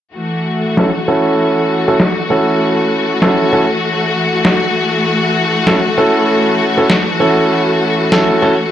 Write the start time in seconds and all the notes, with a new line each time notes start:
0.16 E3 A3 F#4
0.77 C#4 E4 F#4 A4, snare
1.08 C#4 E4 F#4 A4
1.88 C#4 E4 F#4 A4
2.00 snare
2.30 C#4 E4 F#4 A4
3.22 C#4 E4 F#4 A4, snare
3.53 C#4 E4 F#4 A4
4.45 snare
5.67 C#4 E4 F#4 A4, snare
5.98 C#4 E4 F#4 A4
6.77 C#4 E4 F#4 A4
6.90 snare
7.20 C#4 E4 F#4 A4
8.12 C#4 E4 F#4 A4, snare
8.42 C#4 E4 F#4 A4